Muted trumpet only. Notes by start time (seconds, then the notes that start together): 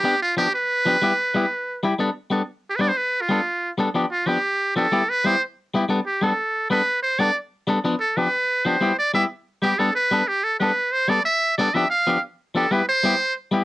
Already playing: G4
0.22 F4
0.37 G4
0.54 B4
2.70 G4
2.76 B4
2.81 D5
2.88 C5
2.97 B4
3.21 F4
4.12 F4
4.27 G4
4.76 A4
5.09 B4
5.26 C5
6.06 G4
6.23 A4
6.71 B4
7.03 C5
7.19 D5
8.00 A4
8.17 B4
8.66 C5
8.99 D5
9.14 E5
9.62 G4
9.79 A4
9.95 B4
10.28 G4
10.44 A4
10.60 B4
10.92 C5
11.09 D5
11.25 E5
11.58 D5
11.74 E5
11.90 F5
12.56 A4
12.72 B4
12.89 C5